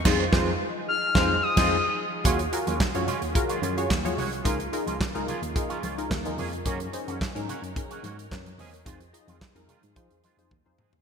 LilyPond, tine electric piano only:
\new Staff \with { instrumentName = "Tine electric piano" } { \clef bass \time 4/4 \key ees \dorian \tempo 4 = 109 f,8 f,8 r4 f,8 r16 f,8 r8. | ees,8 r16 ees,16 r16 ges,16 r16 ees,16 r8 ges,8 ees,8 c,8 | des,8 r16 des,16 r16 des,16 r16 ees,16 r8 des,8 ees,8 f,8 | ges,8 r16 ges,16 r16 aes,16 r16 ges,16 r8 aes,8 ges,8 fes,8 |
f,8 r16 f,16 r16 f,16 r16 aes,16 f16 f,16 r16 f,16 ees,16 f,16 r16 ees,16 | }